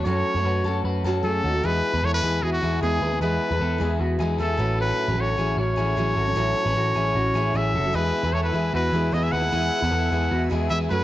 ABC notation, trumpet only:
X:1
M:4/4
L:1/16
Q:1/4=152
K:E
V:1 name="Trumpet"
c8 z4 A4 | B4 c B3 G F3 G4 | B8 z4 A4 | B4 c4 c8- |
c12 e4 | B4 c B3 B4 d e f2- | f8- f z3 e2 B2 |]